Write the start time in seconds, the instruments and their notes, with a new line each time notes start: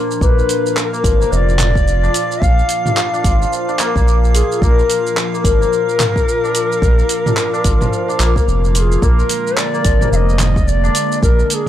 Already playing: ambient pad A#2 F3 D4, santur F3 A#3 D4 F4
0.11 shaker
0.20 analog synth bass A#1, santur A#3, ambient pad F4, native american-style wooden flute B4, synth texture F5, kick, shaker
0.38 santur F4, shaker
0.49 open hi-hat, shaker
0.66 shaker
0.76 native american-style wooden flute A#4, clap, shaker
0.93 santur A#3, shaker
1.04 analog synth bass G#1, santur F3, kick, open hi-hat, shaker
1.20 santur A#3, shaker
1.31 analog synth bass F1, native american-style wooden flute D#5, shaker
1.36 native american-style wooden flute D5
1.49 shaker
1.59 clap, mid tom, open hi-hat, shaker
1.75 kick, shaker
1.88 shaker
2.03 santur D4, shaker
2.14 open hi-hat, shaker
2.32 shaker
2.42 analog synth bass A#1, native american-style wooden flute F5, kick, shaker
2.59 shaker
2.69 open hi-hat, shaker
2.86 santur D4, mid tom, shaker
2.97 clap, shaker
3.13 santur D4, shaker
3.24 analog synth bass G#1, santur F4, kick, open hi-hat, shaker
3.41 santur F3, shaker
3.53 shaker
3.68 santur D4, shaker
3.79 santur A#3, clap, open hi-hat, shaker
3.96 analog synth bass A#1, santur A#3, kick, shaker
4.08 shaker
4.24 shaker
4.34 santur F4, native american-style wooden flute G#4, open hi-hat, shaker
4.52 shaker
4.61 analog synth bass A#1, santur A#3, native american-style wooden flute A#4, kick, shaker
4.79 santur F4, shaker
4.90 open hi-hat, shaker
5.07 shaker
5.17 clap, shaker
5.34 santur A#3, shaker
5.44 analog synth bass G#1, santur F3, native american-style wooden flute A#4, kick, open hi-hat, shaker
5.61 santur A#3, shaker
5.73 shaker
5.89 shaker
6.00 clap, mid tom, open hi-hat, shaker
6.16 kick, shaker
6.29 shaker
6.43 santur D4, shaker
6.55 open hi-hat, shaker
6.72 shaker
6.82 analog synth bass A#1, kick, shaker
6.99 shaker
7.09 open hi-hat, shaker
7.26 santur D4, mid tom, shaker
7.37 clap, shaker
7.53 santur D4, shaker
7.64 analog synth bass G#1, santur F4, kick, open hi-hat, shaker
7.81 santur F3, mid tom, shaker
7.93 shaker
8.08 santur D4, shaker
8.19 analog synth bass A#1, santur A#3, clap, open hi-hat, shaker
8.36 santur A#3, kick, shaker
8.47 analog synth bass F1, shaker
8.65 shaker
8.75 santur F4, native american-style wooden flute A#4, open hi-hat, shaker
8.79 native american-style wooden flute G#4
8.92 shaker
9.02 analog synth bass A#1, ambient pad D3 G#3 A#3, santur A#3, native american-style wooden flute A#4, kick, shaker
9.19 santur F4, shaker
9.29 open hi-hat, shaker
9.47 shaker
9.57 native american-style wooden flute D5, clap, shaker
9.74 santur A#3, shaker
9.85 analog synth bass G#1, santur F3, kick, open hi-hat, shaker
10.01 santur A#3, mid tom, shaker
10.12 analog synth bass F1, native american-style wooden flute D#5 F5, shaker
10.29 shaker
10.39 clap, mid tom, open hi-hat, shaker
10.56 kick, shaker
10.67 native american-style wooden flute D5, shaker
10.84 santur D4, shaker
10.95 open hi-hat, shaker
11.12 shaker
11.22 analog synth bass A#1, native american-style wooden flute A#4, kick, shaker
11.40 shaker
11.50 native american-style wooden flute G#4 A#4, open hi-hat, shaker